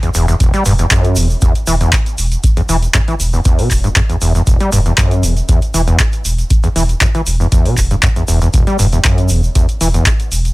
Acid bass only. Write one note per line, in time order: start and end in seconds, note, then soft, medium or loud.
0.03 0.09 E2 medium
0.15 0.26 E2 medium
0.28 0.35 E2 medium
0.40 0.51 E1 loud
0.54 0.64 G3 medium
0.66 0.73 G2 loud
0.79 0.86 E2 medium
0.91 1.18 F#2 loud
1.16 1.28 E2 medium
1.42 1.53 E2 medium
1.67 1.75 E3 medium
1.81 1.91 E2 medium
2.57 2.61 E2 loud
2.69 2.76 E3 medium
2.94 2.99 F#2 loud
3.08 3.14 E3 medium
3.33 3.40 E2 medium
3.45 3.60 E2 medium
3.59 3.69 B2 medium
3.84 3.88 G2 medium
3.96 4.01 F#2 loud
4.09 4.16 E2 medium
4.22 4.33 E2 medium
4.35 4.42 E2 medium
4.47 4.58 E1 loud
4.60 4.70 G3 medium
4.72 4.80 G2 loud
4.86 4.92 E2 medium
4.98 5.25 F#2 loud
5.23 5.34 E2 medium
5.49 5.60 E2 medium
5.74 5.81 E3 medium
5.88 5.97 E2 medium
6.64 6.68 E2 loud
6.76 6.83 E3 medium
7.01 7.06 F#2 loud
7.15 7.21 E3 medium
7.40 7.47 E2 medium
7.52 7.67 E2 medium
7.65 7.75 B2 medium
7.91 7.95 G2 medium
8.03 8.07 F#2 loud
8.16 8.23 E2 medium
8.28 8.39 E2 medium
8.42 8.48 E2 medium
8.54 8.65 E1 loud
8.67 8.77 G3 medium
8.79 8.87 G2 loud
8.93 8.99 E2 medium
9.04 9.31 F#2 loud
9.30 9.41 E2 medium
9.55 9.67 E2 medium
9.81 9.88 E3 medium
9.94 10.04 E2 medium